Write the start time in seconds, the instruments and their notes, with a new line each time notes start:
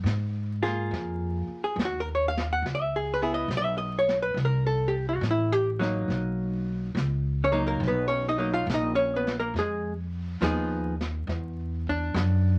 0.04 upright bass G#2, snare, hi-hat pedal
0.63 hollow-body jazz guitar A#3 F4 G#4, snare
0.91 upright bass F2, brush sweep, snare
1.47 muted upright bass stroke
1.64 hollow-body jazz guitar G#4
1.76 upright bass D#2, snare, hi-hat pedal
1.85 hollow-body jazz guitar F#4
2.00 hollow-body jazz guitar A#4
2.15 hollow-body jazz guitar C#5
2.28 hollow-body jazz guitar F5
2.37 snare
2.53 hollow-body jazz guitar F#5
2.62 upright bass C#2, brush sweep, snare
2.75 hollow-body jazz guitar E5
2.96 hollow-body jazz guitar G#4
3.14 hollow-body jazz guitar B4
3.22 hollow-body jazz guitar B3 E4 G#4
3.34 hollow-body jazz guitar D#5
3.48 upright bass B1, snare, hi-hat pedal
3.57 hollow-body jazz guitar E5
3.78 hollow-body jazz guitar D#5
3.99 hollow-body jazz guitar C#5
4.09 snare
4.22 hollow-body jazz guitar B4
4.34 upright bass C2, brush sweep, snare
4.45 hollow-body jazz guitar A#4
4.66 hollow-body jazz guitar A4
4.88 hollow-body jazz guitar G4
5.09 hollow-body jazz guitar F#4
5.21 upright bass A1, snare, hi-hat pedal
5.31 hollow-body jazz guitar E4
5.52 hollow-body jazz guitar G4
5.79 hollow-body jazz guitar F#3 A#3 D#4, snare
6.08 upright bass B1, brush sweep, snare
6.95 upright bass C#2, snare, hi-hat pedal
7.44 hollow-body jazz guitar C#4 C#5
7.52 hollow-body jazz guitar F#3 A#3 D#4
7.67 hollow-body jazz guitar A#3 A#4
7.80 upright bass B1, brush sweep, snare
7.87 hollow-body jazz guitar B3 B4
8.08 hollow-body jazz guitar C#4 C#5
8.28 hollow-body jazz guitar D#4 D#5
8.38 hollow-body jazz guitar F#3 A#3 D#4
8.53 hollow-body jazz guitar F4 F5
8.67 upright bass A#1, snare, hi-hat pedal
8.74 hollow-body jazz guitar D#4 D#5
8.95 hollow-body jazz guitar C#4 C#5
9.16 hollow-body jazz guitar B3 B4
9.27 snare
9.40 hollow-body jazz guitar A#3 A#4
9.54 upright bass F2, brush sweep, snare
9.59 hollow-body jazz guitar G#3 G#4
10.41 upright bass D#2, hollow-body jazz guitar F3 B3 D#4 G#4, snare, hi-hat pedal
11.01 snare
11.27 upright bass E2, brush sweep, snare
11.87 hollow-body jazz guitar D4, kick
12.14 upright bass F#2, snare, hi-hat pedal